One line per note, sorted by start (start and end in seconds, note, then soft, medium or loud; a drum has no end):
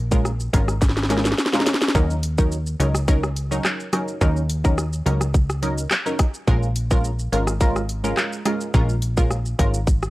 0.00 0.49 A#1 loud
0.11 0.31 G#3 medium
0.11 0.31 C#4 medium
0.11 0.31 F4 medium
0.11 0.31 A#4 medium
0.11 kick medium
0.11 shaker medium
0.25 cross-stick medium
0.25 shaker medium
0.40 shaker medium
0.53 1.34 G#1 loud
0.53 0.74 G#3 medium
0.53 0.74 C#4 medium
0.53 0.74 F4 medium
0.53 0.74 A#4 medium
0.53 kick medium
0.53 closed hi-hat medium
0.53 shaker medium
0.68 cross-stick medium
0.68 shaker medium
0.82 kick loud
0.82 snare medium
0.82 shaker medium
0.89 snare medium
0.97 snare medium
0.97 shaker medium
1.03 snare medium
1.10 1.30 G#3 medium
1.10 1.30 C#4 medium
1.10 1.31 F4 medium
1.10 1.31 A#4 medium
1.10 snare medium
1.10 closed hi-hat medium
1.10 shaker soft
1.17 snare medium
1.25 snare medium
1.25 shaker medium
1.32 snare medium
1.38 snare medium
1.38 shaker medium
1.46 snare medium
1.53 1.73 G#3 medium
1.53 1.73 C#4 medium
1.53 1.73 F4 medium
1.53 1.73 A#4 medium
1.53 snare loud
1.53 shaker medium
1.60 snare medium
1.66 snare loud
1.66 closed hi-hat medium
1.66 shaker medium
1.74 snare loud
1.81 snare loud
1.81 shaker medium
1.88 snare loud
1.95 2.76 D#2 loud
1.95 2.15 F#3 loud
1.95 2.15 C#4 medium
1.95 2.15 D#4 medium
1.95 2.16 A#4 loud
1.95 kick loud
1.95 shaker medium
2.10 shaker medium
2.23 closed hi-hat medium
2.23 shaker medium
2.38 2.58 F#3 medium
2.38 2.58 C#4 medium
2.38 2.58 D#4 medium
2.38 2.58 A#4 medium
2.38 kick loud
2.38 shaker medium
2.52 shaker medium
2.66 shaker medium
2.80 3.61 C#2 loud
2.80 3.00 F#3 medium
2.80 3.00 C#4 medium
2.80 3.00 D#4 medium
2.80 3.00 A#4 medium
2.80 closed hi-hat medium
2.80 shaker medium
2.95 cross-stick loud
2.95 shaker medium
3.08 3.28 F#3 loud
3.08 3.29 C#4 medium
3.08 3.29 D#4 medium
3.08 3.29 A#4 loud
3.08 kick loud
3.08 shaker medium
3.23 cross-stick loud
3.23 shaker medium
3.36 closed hi-hat medium
3.36 shaker soft
3.51 3.90 F#3 medium
3.51 3.90 C#4 medium
3.51 3.90 D#4 medium
3.51 3.90 A#4 medium
3.51 shaker medium
3.65 cross-stick loud
3.65 clap loud
3.65 shaker medium
3.80 shaker medium
3.93 4.19 F#3 medium
3.93 4.19 C#4 medium
3.93 4.19 D#4 medium
3.93 4.19 A#4 medium
3.93 cross-stick loud
3.93 closed hi-hat medium
3.93 shaker medium
4.08 shaker medium
4.21 5.02 D#2 loud
4.21 4.42 F#3 loud
4.21 4.42 C#4 medium
4.21 4.42 D#4 medium
4.21 4.42 A#4 loud
4.21 kick loud
4.21 shaker medium
4.37 shaker medium
4.50 closed hi-hat medium
4.50 shaker medium
4.64 4.84 F#3 medium
4.64 4.84 C#4 medium
4.64 4.84 D#4 medium
4.64 4.84 A#4 medium
4.64 kick medium
4.64 shaker medium
4.78 cross-stick loud
4.78 shaker medium
4.93 shaker medium
5.06 5.87 C#2 loud
5.06 5.26 F#3 medium
5.06 5.27 C#4 medium
5.06 5.27 D#4 medium
5.06 5.27 A#4 medium
5.06 closed hi-hat medium
5.06 shaker medium
5.21 cross-stick loud
5.21 shaker medium
5.34 kick loud
5.34 shaker medium
5.50 cross-stick medium
5.50 shaker medium
5.62 5.83 F#3 medium
5.62 5.83 C#4 medium
5.62 5.83 D#4 medium
5.62 5.83 A#4 medium
5.62 closed hi-hat medium
5.62 shaker soft
5.78 shaker medium
5.91 cross-stick loud
5.91 clap loud
5.91 shaker medium
6.06 6.25 F#3 medium
6.06 6.26 C#4 medium
6.06 6.26 D#4 medium
6.06 6.26 A#4 medium
6.06 shaker medium
6.19 kick loud
6.19 cross-stick loud
6.19 closed hi-hat medium
6.19 shaker medium
6.34 shaker medium
6.47 7.29 A#1 loud
6.47 6.68 G#3 loud
6.47 6.68 C#4 medium
6.47 6.68 F4 medium
6.47 6.68 A#4 loud
6.47 kick loud
6.47 shaker medium
6.63 shaker medium
6.76 closed hi-hat medium
6.76 shaker medium
6.91 7.10 G#3 medium
6.91 7.10 C#4 medium
6.91 7.10 F4 medium
6.91 7.11 A#4 medium
6.91 kick medium
6.91 shaker medium
7.04 shaker medium
7.19 shaker medium
7.32 8.13 G#1 medium
7.32 7.53 G#3 medium
7.32 7.53 C#4 medium
7.32 7.53 F4 medium
7.32 7.53 A#4 medium
7.32 closed hi-hat medium
7.32 shaker medium
7.47 cross-stick loud
7.47 shaker medium
7.60 7.81 G#3 loud
7.60 7.81 C#4 medium
7.60 7.81 F4 medium
7.60 7.81 A#4 loud
7.60 kick loud
7.60 shaker medium
7.76 cross-stick medium
7.76 shaker medium
7.89 closed hi-hat medium
7.89 shaker soft
8.04 8.42 G#3 medium
8.04 8.43 C#4 medium
8.04 8.43 F4 medium
8.04 8.43 A#4 medium
8.04 shaker medium
8.17 cross-stick loud
8.17 clap loud
8.17 shaker medium
8.33 shaker medium
8.45 8.72 G#3 medium
8.45 8.72 C#4 medium
8.45 8.72 F4 medium
8.45 8.72 A#4 medium
8.45 cross-stick loud
8.45 closed hi-hat medium
8.45 shaker medium
8.61 shaker medium
8.74 9.55 A#1 loud
8.74 8.94 G#3 loud
8.74 8.95 C#4 medium
8.74 8.95 F4 medium
8.74 8.95 A#4 loud
8.74 kick loud
8.74 shaker medium
8.89 shaker medium
9.02 closed hi-hat medium
9.02 shaker medium
9.17 9.37 G#3 medium
9.17 9.37 C#4 medium
9.17 9.37 F4 medium
9.17 9.37 A#4 medium
9.17 kick medium
9.17 shaker medium
9.31 cross-stick medium
9.31 shaker medium
9.46 shaker medium
9.59 10.10 G#1 loud
9.59 9.79 G#3 medium
9.59 9.79 C#4 medium
9.59 9.80 F4 medium
9.59 9.80 A#4 medium
9.59 kick medium
9.59 closed hi-hat medium
9.59 shaker medium
9.74 shaker medium
9.87 kick loud
9.87 shaker medium
10.03 cross-stick medium
10.03 shaker medium